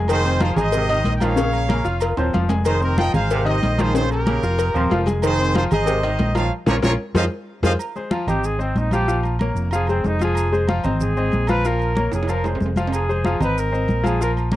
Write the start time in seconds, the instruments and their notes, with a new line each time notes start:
Already playing: fingered electric bass F1, upright piano G#3 G#4 G#5
0.08 trombone section D#3, trumpet section G#4 C5, cowbell, high conga, low agogo, maracas
0.24 upright piano C4 C5 C6, high conga, maracas
0.40 upright piano F3 F4 F5, trumpet section G#4 C5, cowbell, high conga, low agogo, maracas
0.56 fingered electric bass G#1, upright piano G#3 G#4 G#5, trumpet section C5 D#5, high conga, low conga, low agogo, maracas
0.72 trombone section C3, cowbell, high conga, maracas
0.89 upright piano D#3 D#4 D#5, cowbell, high conga, maracas
1.04 fingered electric bass A#1, cowbell, high conga, low agogo, maracas
1.15 trumpet section G5
1.20 trombone section D#3, upright piano F3 F4 F5, trumpet section C#5 F5, cowbell, high conga, low agogo, maracas
1.36 upright piano C#3 C#4 C#5, cowbell, maracas
1.53 high conga, low agogo, maracas
1.69 trombone section C#3, upright piano A#3 A#4 A#5, cowbell, high conga, low agogo, maracas
1.85 fingered electric bass F1, upright piano F4 F5 F6, high conga, maracas
2.01 cowbell, high conga, low agogo, maracas
2.17 fingered electric bass D#1, trombone section F3, upright piano C4 C5 C6, high conga, high timbale, low agogo, maracas
2.33 fingered electric bass F1, upright piano F3 F4 F5, cowbell, high conga, maracas
2.49 upright piano G#3 G#4 G#5, cowbell, high conga, low timbale, low agogo, maracas
2.65 trombone section D#3, trumpet section G#4 C5, cowbell, high conga, low agogo, maracas
2.81 upright piano C4 C5 C6, trumpet section G4 A#4, high conga, maracas
2.97 upright piano F3 F4 F5, trumpet section D#5 G5, cowbell, high conga, low agogo, maracas
3.14 fingered electric bass G#1, upright piano G#3 G#4 G#5, trumpet section C5 F5, high conga, low conga, low agogo, maracas
3.31 trombone section C3, cowbell, maracas
3.45 upright piano D#3 D#4 D#5, trumpet section D#5, cowbell, high conga, maracas
3.49 trumpet section C5
3.62 fingered electric bass A#1, cowbell, high conga, low timbale, low agogo, maracas
3.78 trombone section D#3, upright piano F3 F4 F5, trumpet section C5, cowbell, high conga, low agogo, maracas
3.82 trumpet section G#4
3.94 upright piano C#3 C#4 C#5, trumpet section F4 C5, cowbell, maracas
4.11 trumpet section G4 A#4, high conga, low agogo, maracas
4.26 trombone section C#3, upright piano A#3 A#4 A#5, cowbell, high conga, low agogo, maracas
4.43 fingered electric bass F1, upright piano F4 F5 F6, high conga, maracas
4.59 cowbell, high conga, low agogo, maracas
4.74 fingered electric bass D#1, trombone section F3, upright piano C4 C5 C6, high conga, low agogo, maracas
4.90 fingered electric bass F1, upright piano F3 F4 F5, cowbell, high conga, low timbale, maracas
5.06 upright piano G#3 G#4 G#5, cowbell, high conga, low agogo, maracas
5.22 trombone section D#3, trumpet section G#4 C5, cowbell, high conga, low agogo, maracas
5.39 upright piano C4 C5 C6, high conga, maracas
5.54 upright piano F3 F4 F5, trumpet section C5, cowbell, high conga, low agogo, maracas
5.59 trumpet section G#4
5.71 fingered electric bass G#1, upright piano G#3 G#4 G#5, trumpet section C5 D#5, high conga, low conga, low agogo, maracas
5.85 trombone section C3, cowbell, high conga, maracas
6.03 upright piano D#3 D#4 D#5, cowbell, high conga, maracas
6.19 fingered electric bass A#1, cowbell, high conga, low timbale, low agogo, maracas
6.35 trombone section D#3, upright piano F3 F4 F5, trumpet section C#5 F5, cowbell, high conga, low agogo, maracas
6.66 fingered electric bass A#1, trombone section A#2 C#3 F3, upright piano C#4 F4 A#4, trumpet section F4 A#4 C#5, cowbell, high conga, high timbale, maracas
6.82 fingered electric bass A#1, trombone section A#2 C#3 F3, upright piano C#4 F4 A#4, trumpet section F4 A#4 C#5, cowbell, high conga, high timbale, maracas
7.14 fingered electric bass F2, trombone section C3 D#3 F3, upright piano F4 G#4 C5, trumpet section C5 D#5 F5, cowbell, high conga, high timbale, maracas
7.62 fingered electric bass F2, trombone section C3 D#3 F3, upright piano F4 G#4 C5, trumpet section C5 D#5 F5, cowbell, high conga, high timbale, maracas
7.79 high conga, low agogo, maracas
7.96 upright piano G#3 G#4 C5, high conga, maracas
8.11 upright piano F3 F4 F5, high conga, low agogo, maracas
8.27 fingered electric bass G#1, upright piano C4 C5 D#5, trumpet G4, high conga, low conga, low agogo, maracas
8.44 trumpet G#4, high conga, maracas
8.59 upright piano C4 C5 D#5, trumpet C4, high conga, maracas
8.75 fingered electric bass A#1, trumpet D#4, high conga, low agogo, maracas
8.91 upright piano F3 F4 F5, trumpet G4, high conga, low agogo, maracas
9.08 upright piano F3 F4 F5, high conga, maracas
9.23 high conga, low agogo, maracas
9.39 upright piano A#3 A#4 C#5, high conga, low agogo, maracas
9.55 fingered electric bass F1, high conga, maracas
9.71 upright piano F3 F4 F5, trumpet G#4, high conga, low agogo, maracas
9.87 upright piano G#3 G#4 C5, trumpet C4, high conga, low agogo, maracas
10.04 fingered electric bass F1, trumpet D#4, high conga, low timbale, maracas
10.19 upright piano F3 F4 F5, high conga, low agogo, maracas
10.24 trumpet G#4
10.35 high conga, low agogo, maracas
10.52 upright piano G#3 G#4 C5, high conga, maracas
10.67 upright piano F3 F4 F5, high conga, low agogo, maracas
10.84 fingered electric bass G#1, upright piano C4 C5 D#5, high conga, low conga, low agogo, maracas
11.01 trumpet G#4, high conga, low conga, maracas
11.17 upright piano C4 C5 D#5, high conga, maracas
11.32 fingered electric bass A#1, high conga, low agogo, maracas
11.47 upright piano F3 F4 F5, trumpet B4, high conga, low agogo, maracas
11.65 upright piano F3 F4 F5, trumpet A#4, high conga, maracas
11.79 high conga, low agogo, maracas
11.95 upright piano A#3 A#4 C#5, high conga, low agogo, maracas
12.12 fingered electric bass F1, trumpet G#4, high conga, high timbale, maracas
12.23 high timbale
12.27 upright piano F3 F4 F5, trumpet A#4, high conga, low agogo, maracas
12.44 upright piano G#3 G#4 C5, high conga, high timbale, low agogo, maracas
12.55 low timbale
12.60 fingered electric bass F1, high conga, maracas
12.66 low timbale
12.76 upright piano F3 F4 F5, high conga, low agogo, maracas
12.87 low timbale
12.92 trumpet G#4, high conga, low agogo, maracas
13.09 upright piano G#3 G#4 C5, high conga, maracas
13.25 upright piano F3 F4 F5, high conga, low agogo, maracas
13.40 fingered electric bass G#1, upright piano C4 C5 D#5, trumpet B4, high conga, low conga, low agogo, maracas
13.56 trumpet A#4, high conga, maracas
13.72 upright piano C4 C5 D#5, high conga, maracas
13.88 fingered electric bass A#1, high conga, low agogo, maracas
14.03 upright piano F3 F4 F5, trumpet G#4, high conga, low agogo, maracas
14.20 upright piano F3 F4 F5, trumpet A#4, high conga, maracas
14.37 high conga, low agogo, maracas
14.52 upright piano A#3 A#4, high conga, low agogo